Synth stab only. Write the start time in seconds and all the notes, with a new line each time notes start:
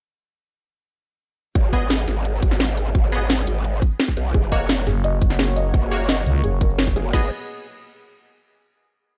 1.73 B3 G#4 D#5
3.12 B3 G#4 D#5
4.52 A#3 F#4 C#5
5.91 A#3 F#4 C#5
7.13 B3 G#4 D#5